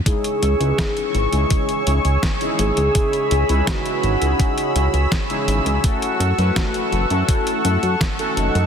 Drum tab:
HH |xxxxxxxxxxxxxxxx|xxxxxxxxxxxxxxxx|xxxxxxxxxxxxxxxx|
SD |----o-------o---|----o-------o---|----o-------o---|
BD |o---o---o---o---|o---o---o---o---|o---o---o---o---|